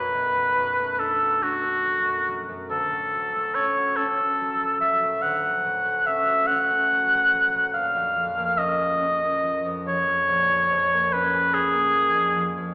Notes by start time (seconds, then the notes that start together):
Already playing: B1 F#2 F#3 A3 C#4 D4 F#4 B4
0.13 B1
0.35 F#3
0.56 F#2
0.79 A3
0.99 D4 A4
1.21 F#4
1.42 D4 F#4
1.63 A3
1.86 F#3
2.05 F#2
2.28 F#3
2.49 F#2
2.69 D2 A4
2.90 A2
3.14 F#3
3.34 A3
3.55 C#4 C#5
3.77 F#4
3.96 C#4 A4
4.18 A3
4.40 F#3
4.60 A2
4.80 F#3 E5
5.03 A2
5.22 D2 F#5
5.44 F#3
5.65 A2
5.85 A3
6.07 C#4 E5
6.29 F#4
6.47 C#4 F#5
6.70 A3
6.91 F#3
7.14 A2
7.34 F#3
7.54 A2
7.74 A#1 F5
7.95 F2
8.16 F3
8.37 A#3
8.57 C#4 D#5
8.80 G#4
9.01 C#4
9.24 A#3
9.43 F3
9.65 F2
9.86 F3 C#5
10.08 F2
10.28 A#1
10.50 F3
10.71 F2
10.93 A#3
11.13 C#4 B4
11.33 G#4
11.53 C#4 G#4
11.73 A#3
11.94 F3
12.15 F2
12.36 F3
12.57 F2